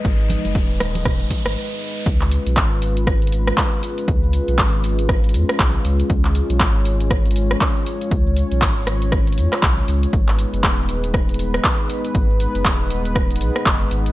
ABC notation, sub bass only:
X:1
M:4/4
L:1/16
Q:"Swing 16ths" 1/4=119
K:C#mix
V:1 name="Sub bass" clef=bass
G,,,2 z F,,, D,,,4- D,,, z2 G,,, z4 | C,,2 z B,,, G,,,6- G,,, z4 z | C,,2 z B,,, G,,,6 E,, z B,,, z C,, z | C,,2 z B,,, G,,,6- G,,, z4 z |
C,,2 z B,,, G,,,6 E,, z B,,, z C,, z | G,,,2 z F,,, D,,,6- D,,, z4 z | G,,,2 z F,,, D,,,6 B,,, z F,,, z G,,, z |]